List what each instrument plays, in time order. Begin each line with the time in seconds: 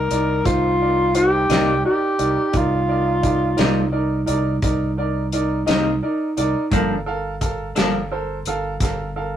Already playing: tenor saxophone A#4
0.11 fingered electric bass C2, grand piano D#4 A#4 D5, closed hi-hat
0.45 fingered electric bass C2, grand piano D#4 A#4 C5, tenor saxophone F4, kick, closed hi-hat
0.81 grand piano D#4 A#4 D5
1.14 grand piano D#4 A#4 C5, tenor saxophone G4, closed hi-hat
1.49 fingered electric bass C2, clean electric guitar C3 G3 A#3 D#4, grand piano D#4 A#4 D5, snare, closed hi-hat
1.85 grand piano D#4 A#4 D5, tenor saxophone G4
2.18 fingered electric bass C2, grand piano D#4 A#4 D5, closed hi-hat
2.52 fingered electric bass C2, grand piano D#4 A#4 D5, kick, closed hi-hat
2.57 tenor saxophone F4
2.88 grand piano D#4 A#4 D5
3.22 grand piano D#4 A#4 D5, kick, closed hi-hat
3.57 fingered electric bass C2, clean electric guitar C3 G3 A#3 D#4, grand piano D#4 A#4 D5, snare, closed hi-hat
3.92 grand piano D#4 A#4 D5
4.26 fingered electric bass C2, grand piano D#4 A#4 D5, closed hi-hat
4.62 fingered electric bass C2, grand piano D#4 A#4 D5, kick, closed hi-hat
4.97 grand piano D#4 A#4 D5
5.32 grand piano D#4 A#4 D5, closed hi-hat
5.66 fingered electric bass C2, clean electric guitar C3 G3 A#3 D#4, grand piano D#4 A#4 D#5, snare, closed hi-hat
6.02 grand piano D#4 A#4 D5
6.37 fingered electric bass C2, grand piano D#4 A#4 D5, closed hi-hat
6.71 fingered electric bass G1, clean electric guitar G2 F3 A#3 D4, grand piano A4 A#4 F5, kick, closed hi-hat
7.06 grand piano A4 A#4 F5
7.41 grand piano A4 A#4 F5, kick, closed hi-hat
7.75 fingered electric bass G1, clean electric guitar G2 F3 A#3 D4, grand piano A4 A#4 F5, snare, closed hi-hat
8.12 grand piano A4 A#4 C5
8.45 fingered electric bass G1, grand piano A4 A#4 F5, closed hi-hat
8.80 fingered electric bass G1, grand piano A4 A#4 F5, kick, snare, closed hi-hat
9.16 grand piano A4 A#4 F5